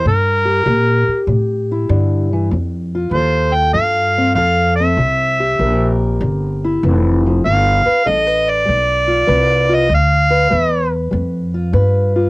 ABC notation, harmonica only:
X:1
M:4/4
L:1/8
Q:"Swing" 1/4=98
K:Gdor
V:1 name="Harmonica"
B4 z4 | z2 c g f2 f e- | e3 z4 z | f2 _e d4 e |
f3 z4 z |]